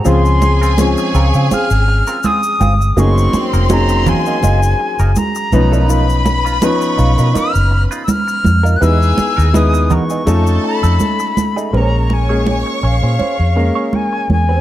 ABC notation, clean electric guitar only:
X:1
M:4/4
L:1/16
Q:"Swing 16ths" 1/4=82
K:Db
V:1 name="Clean electric guitar"
[CFA] z2 [CFB] z2 [CFB] [CFA] [CFA] z2 [CFB] [CFA] z [CFA] z | [B,EA] z2 [B,EB] z2 [B,EB] [B,EA] [B,EA] z2 [B,EB] z3 [EFB] | [EFB] z2 [EF_c] z2 [EFc] [EFB] [EFB] z2 [EFc] z3 [EFB] | [=B,^D^G] z2 [B,D_B] z2 [=B,D_B] [=B,DG] [=A,EG] z2 [A,E=A] z3 [A,EG] |
[DAc] z2 [DAd] z2 [DAd] [DAc] [DAc] z2 [DAd] z3 [DAc] |]